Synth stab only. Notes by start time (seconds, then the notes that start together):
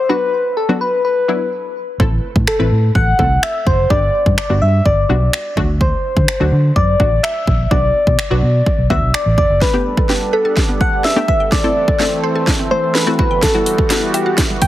0.09 F#3 B3 D4 F#4
0.69 F#3 B3 D4 F#4
1.28 F#3 B3 D4 E4
2.00 A3 C4 E4 A4
2.59 A3 C4 E4 B4
3.19 A3 C4 E4 A4
3.90 G3 B3 D4 G4
4.50 G3 B3 D4 F#4
5.09 G3 B3 D4 F#4
5.57 F#3 A3 D4 F#4
6.40 F#3 A3 D4 F#4
7.00 F#3 A3 D4 F#4
7.71 F#3 B3 D4 F#4
8.30 F#3 B3 D4 F#4
8.90 F#3 B3 D4 F#4
9.73 A3 B3 D4 G4
10.09 A3 B3 D4 G4
11.16 A3 B3 D4 G4
11.64 A3 C4 E4 A4
12.00 A3 C4 E4 A4
13.07 A3 C4 E4 F#4
13.19 G3 B3 E4 F#4
13.54 G3 B3 E4 F#4
13.90 G3 B3 E4 F#4